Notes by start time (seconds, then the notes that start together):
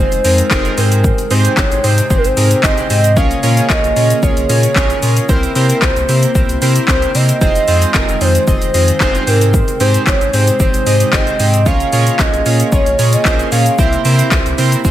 Already playing: D#3 G#3 C4 D#4 F4 C5
0.00 G#4 C5
0.12 F1, closed hi-hat, shaker
0.24 F2 C4 D#4 F4 G#4 A#4, open hi-hat, shaker
0.38 closed hi-hat, shaker
0.51 F1 C4 D#4 F4 G#4 A#4, kick, clap, shaker
0.65 closed hi-hat, shaker
0.77 G#2 C3 C4 D#4 G4 G#4 A#4 C5 G5, open hi-hat, shaker
0.92 closed hi-hat, shaker
1.04 kick, shaker
1.18 closed hi-hat, shaker
1.31 G#2 C4 D#4 G4 G#4 C5, open hi-hat, shaker
1.45 closed hi-hat, shaker
1.57 G#1 G4 G#4 C5 C#5, kick, clap, shaker
1.71 G#1, closed hi-hat, shaker
1.84 G#2 C4 D#4 G4 G#4 C5, open hi-hat, shaker
1.98 closed hi-hat, shaker
2.10 G#1 C4 D#4 G4 G#4 C5, kick, shaker
2.18 A#4
2.24 G#1 C5, closed hi-hat, shaker
2.37 G#2 C4 D#4 G4 G#4 A#4, open hi-hat, shaker
2.51 closed hi-hat, shaker
2.63 G#1 C4 D#4 G4 G#4 C5 D#5, kick, clap, shaker
2.78 closed hi-hat, shaker
2.90 G#2 C4 D#4 G4 G#4 C5, open hi-hat, shaker
3.04 closed hi-hat, shaker
3.16 A#1 C#3 A#3 C#4 F4 G#4 A#4 C#5 F5, kick, shaker
3.31 closed hi-hat, shaker
3.43 A#2 C#4 F4 G#4 A#4 C#5, open hi-hat, shaker
3.57 closed hi-hat, shaker
3.70 A#1 C#4 F4 G#4 A#4 C#5 D#5, kick, clap, shaker
3.84 A#1, closed hi-hat, shaker
3.96 A#2 C#4 F4 G#4 A#4 C#5, open hi-hat, shaker
4.10 closed hi-hat, shaker
4.23 A#1 C#4 F4 G#4 A#4 C#5, kick, shaker
4.37 A#1, closed hi-hat, shaker
4.49 A#2 C#4 F4 G#4 A#4 C#5, open hi-hat, shaker
4.63 closed hi-hat, shaker
4.76 A#1 C#4 F4 G#4 A#4 C#5, kick, clap, shaker
4.90 closed hi-hat, shaker
5.02 A#2 C#4 F4 G#4 A#4 C#5, open hi-hat, shaker
5.17 closed hi-hat, shaker
5.29 C2 C3 A#3 C4 E4 G4 A#4 C5, kick, shaker
5.43 closed hi-hat, shaker
5.55 C3 C4 E4 G4 A#4 C5, open hi-hat, shaker
5.70 closed hi-hat, shaker
5.82 C2 C4 E4 G4 A#4 C5, kick, clap, shaker
5.96 C2, closed hi-hat, shaker
6.09 C3 C4 E4 G4 A#4 C5, open hi-hat, shaker
6.23 closed hi-hat, shaker
6.35 C2 C4 E4 G4 A#4 C5, kick, shaker
6.49 C2, closed hi-hat, shaker
6.62 C3 C4 E4 G4 A#4 C5, open hi-hat, shaker
6.76 closed hi-hat, shaker
6.88 C2 C4 E4 G4 A#4 C5, kick, clap, shaker
7.02 closed hi-hat, shaker
7.15 C3 C4 E4 G4 A#4 C5 D#5, open hi-hat, shaker
7.29 closed hi-hat, shaker
7.41 F1 D#3 G#3 C4 D#4 F4 G#4 C5, kick, shaker
7.55 closed hi-hat, shaker
7.68 F2 C4 D#4 F4 G#4 C5, open hi-hat, shaker
7.82 closed hi-hat, shaker
7.94 F1 C4 D#4 F4 G#4 A#4, kick, clap, shaker
8.08 F1, closed hi-hat, shaker
8.21 F2 C4 D#4 F4 G#4 C5, open hi-hat, shaker
8.35 closed hi-hat, shaker
8.47 F1 C4 D#4 F4 G#4 D#5, kick, shaker
8.62 F1, closed hi-hat, shaker
8.74 F2 C4 D#4 F4 G#4 D#5, open hi-hat, shaker
8.88 closed hi-hat, shaker
9.00 F1 C4 D#4 F4 G#4 C5, kick, clap, shaker
9.15 closed hi-hat, shaker
9.27 G#2 C3 C4 D#4 G4 G#4 A#4 C5 G5, open hi-hat, shaker
9.41 closed hi-hat, shaker
9.54 kick, shaker
9.68 closed hi-hat, shaker
9.80 G#2 C4 D#4 G4 G#4 C5, open hi-hat, shaker
9.94 closed hi-hat, shaker
10.07 G#1 C4 D#4 G4 G#4 C5 C#5, kick, clap, shaker
10.21 G#1, closed hi-hat, shaker
10.33 G#2 C4 D#4 G4 G#4 C5, open hi-hat, shaker
10.47 closed hi-hat, shaker
10.60 G#1 C4 D#4 G4 G#4 C5, kick, shaker
10.74 G#1, closed hi-hat, shaker
10.86 G#2 C4 D#4 G4 G#4 D#5, open hi-hat, shaker
11.00 closed hi-hat, shaker
11.13 G#1 C4 D#4 G4 G#4 C5 D#5, kick, clap, shaker
11.27 closed hi-hat, shaker
11.39 G#2 C4 D#4 G4 G#4 C5, open hi-hat, shaker
11.54 closed hi-hat, shaker
11.66 A#1 C#3 A#3 C#4 F4 G#4 A#4 C#5 F5, kick, shaker
11.80 closed hi-hat, shaker
11.93 A#2 C#4 F4 G#4 A#4 C#5, open hi-hat, shaker
12.07 closed hi-hat, shaker
12.19 A#1 C#4 F4 G#4 A#4 C#5 D#5, kick, clap, shaker
12.33 A#1, closed hi-hat, shaker
12.46 A#2 C#4 F4 G#4 A#4 C#5, open hi-hat, shaker
12.60 closed hi-hat, shaker
12.72 A#1 C#4 F4 G#4 A#4 C#5, kick, shaker
12.86 A#1, closed hi-hat, shaker
12.99 A#2 C#4 F4 G#4 A#4 C#5, open hi-hat, shaker
13.13 D#5, closed hi-hat, shaker
13.25 A#1 C#4 F4 G#4 A#4 C5, kick, clap, shaker
13.39 closed hi-hat, shaker
13.52 A#2 C#4 F4 G#4 A#4 C#5 F5, open hi-hat, shaker
13.66 closed hi-hat, shaker
13.78 C2 C3 C4 E4 G4 A#4 C5 E5, kick, shaker
13.93 closed hi-hat, shaker
14.05 C3 C4 E4 G4 A#4 C5, open hi-hat, shaker
14.19 closed hi-hat, shaker
14.31 C2 C4 E4 G4 A#4 C5, kick, clap, shaker
14.46 C2, closed hi-hat, shaker
14.58 C3 C4 E4 G4 A#4 C5, open hi-hat, shaker
14.72 closed hi-hat, shaker
14.85 F1 D#3 G#3 C4 D#4 F4 G#4 C5, kick, shaker